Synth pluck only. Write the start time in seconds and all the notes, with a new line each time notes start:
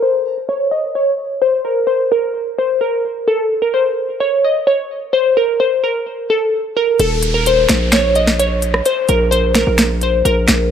0.02 C5
0.49 C#5
0.71 D#5
0.95 C#5
1.42 C5
1.65 A#4
1.87 C5
2.12 A#4
2.58 C5
2.81 A#4
3.28 A4
3.62 A#4
3.74 C5
4.20 C#5
4.45 D#5
4.67 C#5
5.13 C5
5.37 A#4
5.60 C5
5.84 A#4
6.30 A4
6.77 A#4
7.00 A4
7.34 A#4
7.47 C5
7.93 C#5
8.16 D#5
8.40 C#5
8.86 C5
9.09 A#4
9.31 C5
9.56 A#4
10.03 C5
10.25 A#4